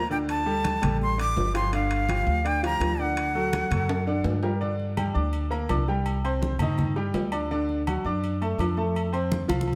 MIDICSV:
0, 0, Header, 1, 5, 480
1, 0, Start_track
1, 0, Key_signature, -2, "minor"
1, 0, Tempo, 360794
1, 379, Time_signature, 4, 2, 24, 8
1, 12974, End_track
2, 0, Start_track
2, 0, Title_t, "Flute"
2, 0, Program_c, 0, 73
2, 152, Note_on_c, 0, 79, 86
2, 232, Note_off_c, 0, 79, 0
2, 400, Note_on_c, 0, 81, 96
2, 1296, Note_off_c, 0, 81, 0
2, 1365, Note_on_c, 0, 84, 101
2, 1576, Note_off_c, 0, 84, 0
2, 1602, Note_on_c, 0, 86, 118
2, 2037, Note_off_c, 0, 86, 0
2, 2075, Note_on_c, 0, 84, 93
2, 2290, Note_off_c, 0, 84, 0
2, 2317, Note_on_c, 0, 77, 99
2, 3281, Note_on_c, 0, 79, 95
2, 3301, Note_off_c, 0, 77, 0
2, 3509, Note_off_c, 0, 79, 0
2, 3532, Note_on_c, 0, 82, 113
2, 4012, Note_on_c, 0, 78, 93
2, 4032, Note_off_c, 0, 82, 0
2, 5675, Note_off_c, 0, 78, 0
2, 12974, End_track
3, 0, Start_track
3, 0, Title_t, "Grand piano"
3, 0, Program_c, 1, 0
3, 129, Note_on_c, 1, 50, 82
3, 140, Note_on_c, 1, 62, 85
3, 143, Note_on_c, 1, 74, 84
3, 527, Note_off_c, 1, 50, 0
3, 533, Note_off_c, 1, 62, 0
3, 535, Note_off_c, 1, 74, 0
3, 609, Note_on_c, 1, 55, 76
3, 613, Note_on_c, 1, 67, 79
3, 618, Note_on_c, 1, 69, 74
3, 1007, Note_off_c, 1, 55, 0
3, 1009, Note_off_c, 1, 67, 0
3, 1012, Note_off_c, 1, 69, 0
3, 1086, Note_on_c, 1, 55, 75
3, 1091, Note_on_c, 1, 67, 73
3, 1092, Note_on_c, 1, 69, 81
3, 1484, Note_off_c, 1, 55, 0
3, 1487, Note_off_c, 1, 67, 0
3, 1488, Note_off_c, 1, 69, 0
3, 1570, Note_on_c, 1, 50, 89
3, 1574, Note_on_c, 1, 74, 79
3, 1580, Note_on_c, 1, 62, 82
3, 1967, Note_off_c, 1, 50, 0
3, 1969, Note_off_c, 1, 74, 0
3, 1973, Note_off_c, 1, 62, 0
3, 2051, Note_on_c, 1, 53, 70
3, 2052, Note_on_c, 1, 65, 71
3, 2052, Note_on_c, 1, 67, 72
3, 2250, Note_off_c, 1, 53, 0
3, 2251, Note_off_c, 1, 65, 0
3, 2251, Note_off_c, 1, 67, 0
3, 2295, Note_on_c, 1, 50, 87
3, 2295, Note_on_c, 1, 62, 84
3, 2300, Note_on_c, 1, 74, 85
3, 2690, Note_off_c, 1, 50, 0
3, 2690, Note_off_c, 1, 62, 0
3, 2693, Note_off_c, 1, 74, 0
3, 2775, Note_on_c, 1, 53, 60
3, 2779, Note_on_c, 1, 65, 63
3, 2781, Note_on_c, 1, 67, 65
3, 3170, Note_off_c, 1, 53, 0
3, 3172, Note_off_c, 1, 65, 0
3, 3173, Note_off_c, 1, 67, 0
3, 3249, Note_on_c, 1, 50, 75
3, 3253, Note_on_c, 1, 62, 76
3, 3256, Note_on_c, 1, 74, 77
3, 3449, Note_off_c, 1, 50, 0
3, 3452, Note_off_c, 1, 62, 0
3, 3454, Note_off_c, 1, 74, 0
3, 3499, Note_on_c, 1, 53, 67
3, 3501, Note_on_c, 1, 65, 76
3, 3509, Note_on_c, 1, 67, 82
3, 3892, Note_off_c, 1, 53, 0
3, 3893, Note_off_c, 1, 65, 0
3, 3898, Note_off_c, 1, 67, 0
3, 3979, Note_on_c, 1, 50, 76
3, 3979, Note_on_c, 1, 62, 80
3, 3982, Note_on_c, 1, 74, 90
3, 4372, Note_off_c, 1, 50, 0
3, 4372, Note_off_c, 1, 62, 0
3, 4374, Note_off_c, 1, 74, 0
3, 4454, Note_on_c, 1, 66, 72
3, 4456, Note_on_c, 1, 54, 84
3, 4461, Note_on_c, 1, 69, 86
3, 4849, Note_off_c, 1, 66, 0
3, 4851, Note_off_c, 1, 54, 0
3, 4854, Note_off_c, 1, 69, 0
3, 4938, Note_on_c, 1, 66, 80
3, 4942, Note_on_c, 1, 54, 81
3, 4942, Note_on_c, 1, 69, 86
3, 5332, Note_off_c, 1, 66, 0
3, 5334, Note_off_c, 1, 54, 0
3, 5334, Note_off_c, 1, 69, 0
3, 5411, Note_on_c, 1, 50, 85
3, 5418, Note_on_c, 1, 62, 83
3, 5420, Note_on_c, 1, 74, 86
3, 5808, Note_off_c, 1, 50, 0
3, 5812, Note_off_c, 1, 62, 0
3, 5813, Note_off_c, 1, 74, 0
3, 5892, Note_on_c, 1, 55, 73
3, 5895, Note_on_c, 1, 67, 70
3, 5897, Note_on_c, 1, 70, 80
3, 6091, Note_off_c, 1, 55, 0
3, 6093, Note_off_c, 1, 67, 0
3, 6094, Note_off_c, 1, 70, 0
3, 6130, Note_on_c, 1, 50, 79
3, 6130, Note_on_c, 1, 62, 85
3, 6132, Note_on_c, 1, 74, 86
3, 6527, Note_off_c, 1, 50, 0
3, 6527, Note_off_c, 1, 62, 0
3, 6528, Note_off_c, 1, 74, 0
3, 6611, Note_on_c, 1, 55, 68
3, 6616, Note_on_c, 1, 67, 62
3, 6621, Note_on_c, 1, 79, 67
3, 6811, Note_off_c, 1, 55, 0
3, 6814, Note_off_c, 1, 67, 0
3, 6817, Note_off_c, 1, 79, 0
3, 6840, Note_on_c, 1, 62, 76
3, 6843, Note_on_c, 1, 74, 81
3, 6851, Note_on_c, 1, 86, 81
3, 7241, Note_off_c, 1, 62, 0
3, 7243, Note_off_c, 1, 74, 0
3, 7247, Note_off_c, 1, 86, 0
3, 7324, Note_on_c, 1, 58, 83
3, 7330, Note_on_c, 1, 70, 74
3, 7330, Note_on_c, 1, 82, 81
3, 7527, Note_off_c, 1, 58, 0
3, 7530, Note_off_c, 1, 82, 0
3, 7531, Note_off_c, 1, 70, 0
3, 7581, Note_on_c, 1, 62, 70
3, 7584, Note_on_c, 1, 74, 75
3, 7590, Note_on_c, 1, 86, 81
3, 7777, Note_off_c, 1, 62, 0
3, 7779, Note_off_c, 1, 74, 0
3, 7782, Note_off_c, 1, 86, 0
3, 7824, Note_on_c, 1, 55, 76
3, 7828, Note_on_c, 1, 67, 71
3, 7834, Note_on_c, 1, 79, 77
3, 8216, Note_off_c, 1, 55, 0
3, 8218, Note_off_c, 1, 67, 0
3, 8222, Note_off_c, 1, 79, 0
3, 8306, Note_on_c, 1, 60, 81
3, 8313, Note_on_c, 1, 72, 84
3, 8320, Note_on_c, 1, 84, 84
3, 8697, Note_off_c, 1, 60, 0
3, 8701, Note_off_c, 1, 72, 0
3, 8705, Note_off_c, 1, 84, 0
3, 8800, Note_on_c, 1, 51, 94
3, 8801, Note_on_c, 1, 63, 90
3, 8811, Note_on_c, 1, 75, 97
3, 9185, Note_off_c, 1, 51, 0
3, 9186, Note_off_c, 1, 63, 0
3, 9192, Note_off_c, 1, 75, 0
3, 9259, Note_on_c, 1, 55, 86
3, 9262, Note_on_c, 1, 67, 77
3, 9274, Note_on_c, 1, 79, 78
3, 9653, Note_off_c, 1, 55, 0
3, 9654, Note_off_c, 1, 67, 0
3, 9662, Note_off_c, 1, 79, 0
3, 9740, Note_on_c, 1, 74, 84
3, 9745, Note_on_c, 1, 62, 79
3, 9751, Note_on_c, 1, 86, 73
3, 9936, Note_off_c, 1, 74, 0
3, 9939, Note_off_c, 1, 62, 0
3, 9943, Note_off_c, 1, 86, 0
3, 9989, Note_on_c, 1, 50, 89
3, 9993, Note_on_c, 1, 62, 90
3, 9994, Note_on_c, 1, 74, 96
3, 10379, Note_off_c, 1, 50, 0
3, 10381, Note_off_c, 1, 62, 0
3, 10382, Note_off_c, 1, 74, 0
3, 10474, Note_on_c, 1, 54, 59
3, 10476, Note_on_c, 1, 66, 59
3, 10481, Note_on_c, 1, 78, 57
3, 10665, Note_off_c, 1, 54, 0
3, 10666, Note_off_c, 1, 66, 0
3, 10669, Note_off_c, 1, 78, 0
3, 10715, Note_on_c, 1, 74, 84
3, 10720, Note_on_c, 1, 62, 91
3, 10725, Note_on_c, 1, 86, 82
3, 11102, Note_off_c, 1, 74, 0
3, 11105, Note_off_c, 1, 62, 0
3, 11108, Note_off_c, 1, 86, 0
3, 11193, Note_on_c, 1, 57, 80
3, 11197, Note_on_c, 1, 81, 75
3, 11200, Note_on_c, 1, 69, 80
3, 11384, Note_off_c, 1, 57, 0
3, 11386, Note_off_c, 1, 81, 0
3, 11388, Note_off_c, 1, 69, 0
3, 11431, Note_on_c, 1, 62, 78
3, 11431, Note_on_c, 1, 74, 70
3, 11433, Note_on_c, 1, 86, 71
3, 11623, Note_off_c, 1, 62, 0
3, 11623, Note_off_c, 1, 74, 0
3, 11624, Note_off_c, 1, 86, 0
3, 11668, Note_on_c, 1, 57, 75
3, 11676, Note_on_c, 1, 69, 74
3, 11679, Note_on_c, 1, 81, 75
3, 12058, Note_off_c, 1, 57, 0
3, 12063, Note_off_c, 1, 69, 0
3, 12064, Note_off_c, 1, 81, 0
3, 12139, Note_on_c, 1, 60, 84
3, 12148, Note_on_c, 1, 72, 83
3, 12151, Note_on_c, 1, 84, 80
3, 12532, Note_off_c, 1, 60, 0
3, 12538, Note_off_c, 1, 72, 0
3, 12540, Note_off_c, 1, 84, 0
3, 12615, Note_on_c, 1, 53, 94
3, 12622, Note_on_c, 1, 65, 97
3, 12630, Note_on_c, 1, 77, 95
3, 12974, Note_off_c, 1, 53, 0
3, 12974, Note_off_c, 1, 65, 0
3, 12974, Note_off_c, 1, 77, 0
3, 12974, End_track
4, 0, Start_track
4, 0, Title_t, "Upright bass"
4, 0, Program_c, 2, 32
4, 0, Note_on_c, 2, 38, 81
4, 1017, Note_off_c, 2, 38, 0
4, 1095, Note_on_c, 2, 33, 98
4, 1766, Note_off_c, 2, 33, 0
4, 1814, Note_on_c, 2, 31, 95
4, 2939, Note_off_c, 2, 31, 0
4, 3014, Note_on_c, 2, 38, 105
4, 3685, Note_off_c, 2, 38, 0
4, 3724, Note_on_c, 2, 38, 93
4, 4854, Note_off_c, 2, 38, 0
4, 4930, Note_on_c, 2, 42, 102
4, 5603, Note_off_c, 2, 42, 0
4, 5644, Note_on_c, 2, 43, 89
4, 6774, Note_off_c, 2, 43, 0
4, 6853, Note_on_c, 2, 38, 91
4, 7525, Note_off_c, 2, 38, 0
4, 7573, Note_on_c, 2, 36, 94
4, 8699, Note_off_c, 2, 36, 0
4, 8767, Note_on_c, 2, 43, 86
4, 9442, Note_off_c, 2, 43, 0
4, 9503, Note_on_c, 2, 38, 88
4, 10624, Note_off_c, 2, 38, 0
4, 10703, Note_on_c, 2, 42, 86
4, 11371, Note_off_c, 2, 42, 0
4, 11420, Note_on_c, 2, 41, 86
4, 12543, Note_off_c, 2, 41, 0
4, 12624, Note_on_c, 2, 36, 102
4, 12974, Note_off_c, 2, 36, 0
4, 12974, End_track
5, 0, Start_track
5, 0, Title_t, "Drums"
5, 146, Note_on_c, 9, 63, 36
5, 279, Note_off_c, 9, 63, 0
5, 380, Note_on_c, 9, 63, 33
5, 385, Note_on_c, 9, 65, 80
5, 513, Note_off_c, 9, 63, 0
5, 518, Note_off_c, 9, 65, 0
5, 620, Note_on_c, 9, 63, 33
5, 753, Note_off_c, 9, 63, 0
5, 857, Note_on_c, 9, 65, 68
5, 857, Note_on_c, 9, 66, 55
5, 862, Note_on_c, 9, 63, 92
5, 990, Note_off_c, 9, 65, 0
5, 990, Note_off_c, 9, 66, 0
5, 995, Note_off_c, 9, 63, 0
5, 1104, Note_on_c, 9, 65, 93
5, 1106, Note_on_c, 9, 64, 72
5, 1237, Note_off_c, 9, 65, 0
5, 1240, Note_off_c, 9, 64, 0
5, 1350, Note_on_c, 9, 63, 34
5, 1483, Note_off_c, 9, 63, 0
5, 1583, Note_on_c, 9, 63, 38
5, 1590, Note_on_c, 9, 65, 73
5, 1716, Note_off_c, 9, 63, 0
5, 1723, Note_off_c, 9, 65, 0
5, 1818, Note_on_c, 9, 63, 74
5, 1823, Note_on_c, 9, 66, 75
5, 1951, Note_off_c, 9, 63, 0
5, 1956, Note_off_c, 9, 66, 0
5, 2061, Note_on_c, 9, 65, 91
5, 2062, Note_on_c, 9, 63, 35
5, 2194, Note_off_c, 9, 65, 0
5, 2195, Note_off_c, 9, 63, 0
5, 2296, Note_on_c, 9, 63, 35
5, 2302, Note_on_c, 9, 65, 68
5, 2429, Note_off_c, 9, 63, 0
5, 2435, Note_off_c, 9, 65, 0
5, 2537, Note_on_c, 9, 63, 29
5, 2537, Note_on_c, 9, 65, 73
5, 2670, Note_off_c, 9, 63, 0
5, 2671, Note_off_c, 9, 65, 0
5, 2776, Note_on_c, 9, 63, 60
5, 2787, Note_on_c, 9, 65, 87
5, 2787, Note_on_c, 9, 66, 64
5, 2909, Note_off_c, 9, 63, 0
5, 2920, Note_off_c, 9, 65, 0
5, 2920, Note_off_c, 9, 66, 0
5, 3254, Note_on_c, 9, 63, 36
5, 3268, Note_on_c, 9, 65, 65
5, 3387, Note_off_c, 9, 63, 0
5, 3401, Note_off_c, 9, 65, 0
5, 3498, Note_on_c, 9, 63, 37
5, 3510, Note_on_c, 9, 65, 71
5, 3631, Note_off_c, 9, 63, 0
5, 3643, Note_off_c, 9, 65, 0
5, 3735, Note_on_c, 9, 63, 80
5, 3743, Note_on_c, 9, 65, 86
5, 3743, Note_on_c, 9, 66, 76
5, 3868, Note_off_c, 9, 63, 0
5, 3877, Note_off_c, 9, 65, 0
5, 3877, Note_off_c, 9, 66, 0
5, 3977, Note_on_c, 9, 63, 37
5, 4110, Note_off_c, 9, 63, 0
5, 4216, Note_on_c, 9, 63, 34
5, 4219, Note_on_c, 9, 65, 87
5, 4349, Note_off_c, 9, 63, 0
5, 4352, Note_off_c, 9, 65, 0
5, 4454, Note_on_c, 9, 63, 33
5, 4587, Note_off_c, 9, 63, 0
5, 4697, Note_on_c, 9, 63, 89
5, 4699, Note_on_c, 9, 65, 69
5, 4699, Note_on_c, 9, 66, 65
5, 4830, Note_off_c, 9, 63, 0
5, 4832, Note_off_c, 9, 65, 0
5, 4832, Note_off_c, 9, 66, 0
5, 4940, Note_on_c, 9, 64, 80
5, 4943, Note_on_c, 9, 65, 91
5, 5073, Note_off_c, 9, 64, 0
5, 5077, Note_off_c, 9, 65, 0
5, 5180, Note_on_c, 9, 65, 80
5, 5183, Note_on_c, 9, 63, 37
5, 5313, Note_off_c, 9, 65, 0
5, 5316, Note_off_c, 9, 63, 0
5, 5417, Note_on_c, 9, 63, 35
5, 5550, Note_off_c, 9, 63, 0
5, 5646, Note_on_c, 9, 66, 74
5, 5662, Note_on_c, 9, 63, 69
5, 5779, Note_off_c, 9, 66, 0
5, 5795, Note_off_c, 9, 63, 0
5, 5889, Note_on_c, 9, 66, 72
5, 5905, Note_on_c, 9, 63, 37
5, 6022, Note_off_c, 9, 66, 0
5, 6038, Note_off_c, 9, 63, 0
5, 6140, Note_on_c, 9, 63, 36
5, 6273, Note_off_c, 9, 63, 0
5, 6377, Note_on_c, 9, 63, 35
5, 6510, Note_off_c, 9, 63, 0
5, 6615, Note_on_c, 9, 63, 64
5, 6615, Note_on_c, 9, 66, 58
5, 6615, Note_on_c, 9, 68, 118
5, 6748, Note_off_c, 9, 63, 0
5, 6748, Note_off_c, 9, 66, 0
5, 6748, Note_off_c, 9, 68, 0
5, 7090, Note_on_c, 9, 68, 65
5, 7095, Note_on_c, 9, 63, 35
5, 7223, Note_off_c, 9, 68, 0
5, 7228, Note_off_c, 9, 63, 0
5, 7335, Note_on_c, 9, 63, 39
5, 7340, Note_on_c, 9, 68, 83
5, 7468, Note_off_c, 9, 63, 0
5, 7473, Note_off_c, 9, 68, 0
5, 7574, Note_on_c, 9, 66, 74
5, 7574, Note_on_c, 9, 68, 102
5, 7576, Note_on_c, 9, 63, 86
5, 7707, Note_off_c, 9, 66, 0
5, 7707, Note_off_c, 9, 68, 0
5, 7709, Note_off_c, 9, 63, 0
5, 7824, Note_on_c, 9, 63, 39
5, 7957, Note_off_c, 9, 63, 0
5, 8059, Note_on_c, 9, 68, 97
5, 8063, Note_on_c, 9, 63, 37
5, 8192, Note_off_c, 9, 68, 0
5, 8196, Note_off_c, 9, 63, 0
5, 8310, Note_on_c, 9, 63, 33
5, 8311, Note_on_c, 9, 68, 94
5, 8444, Note_off_c, 9, 63, 0
5, 8444, Note_off_c, 9, 68, 0
5, 8538, Note_on_c, 9, 66, 57
5, 8548, Note_on_c, 9, 63, 87
5, 8671, Note_off_c, 9, 66, 0
5, 8682, Note_off_c, 9, 63, 0
5, 8771, Note_on_c, 9, 68, 109
5, 8783, Note_on_c, 9, 64, 88
5, 8904, Note_off_c, 9, 68, 0
5, 8916, Note_off_c, 9, 64, 0
5, 9018, Note_on_c, 9, 68, 75
5, 9027, Note_on_c, 9, 63, 38
5, 9027, Note_on_c, 9, 64, 76
5, 9151, Note_off_c, 9, 68, 0
5, 9160, Note_off_c, 9, 63, 0
5, 9160, Note_off_c, 9, 64, 0
5, 9263, Note_on_c, 9, 63, 35
5, 9396, Note_off_c, 9, 63, 0
5, 9499, Note_on_c, 9, 63, 78
5, 9501, Note_on_c, 9, 66, 80
5, 9501, Note_on_c, 9, 68, 71
5, 9632, Note_off_c, 9, 63, 0
5, 9634, Note_off_c, 9, 66, 0
5, 9634, Note_off_c, 9, 68, 0
5, 9738, Note_on_c, 9, 68, 108
5, 9748, Note_on_c, 9, 63, 36
5, 9871, Note_off_c, 9, 68, 0
5, 9881, Note_off_c, 9, 63, 0
5, 9990, Note_on_c, 9, 63, 36
5, 10123, Note_off_c, 9, 63, 0
5, 10231, Note_on_c, 9, 63, 35
5, 10364, Note_off_c, 9, 63, 0
5, 10473, Note_on_c, 9, 66, 69
5, 10473, Note_on_c, 9, 68, 109
5, 10475, Note_on_c, 9, 63, 64
5, 10606, Note_off_c, 9, 66, 0
5, 10606, Note_off_c, 9, 68, 0
5, 10608, Note_off_c, 9, 63, 0
5, 10949, Note_on_c, 9, 63, 39
5, 10958, Note_on_c, 9, 68, 62
5, 11082, Note_off_c, 9, 63, 0
5, 11091, Note_off_c, 9, 68, 0
5, 11195, Note_on_c, 9, 63, 38
5, 11202, Note_on_c, 9, 68, 75
5, 11328, Note_off_c, 9, 63, 0
5, 11335, Note_off_c, 9, 68, 0
5, 11431, Note_on_c, 9, 63, 79
5, 11446, Note_on_c, 9, 66, 78
5, 11446, Note_on_c, 9, 68, 106
5, 11564, Note_off_c, 9, 63, 0
5, 11579, Note_off_c, 9, 66, 0
5, 11579, Note_off_c, 9, 68, 0
5, 11670, Note_on_c, 9, 63, 34
5, 11803, Note_off_c, 9, 63, 0
5, 11913, Note_on_c, 9, 63, 33
5, 11925, Note_on_c, 9, 68, 97
5, 12046, Note_off_c, 9, 63, 0
5, 12058, Note_off_c, 9, 68, 0
5, 12151, Note_on_c, 9, 63, 33
5, 12156, Note_on_c, 9, 68, 90
5, 12284, Note_off_c, 9, 63, 0
5, 12289, Note_off_c, 9, 68, 0
5, 12394, Note_on_c, 9, 63, 100
5, 12406, Note_on_c, 9, 66, 57
5, 12527, Note_off_c, 9, 63, 0
5, 12539, Note_off_c, 9, 66, 0
5, 12631, Note_on_c, 9, 63, 112
5, 12637, Note_on_c, 9, 68, 100
5, 12764, Note_off_c, 9, 63, 0
5, 12770, Note_off_c, 9, 68, 0
5, 12785, Note_on_c, 9, 63, 81
5, 12872, Note_on_c, 9, 68, 68
5, 12918, Note_off_c, 9, 63, 0
5, 12974, Note_off_c, 9, 68, 0
5, 12974, End_track
0, 0, End_of_file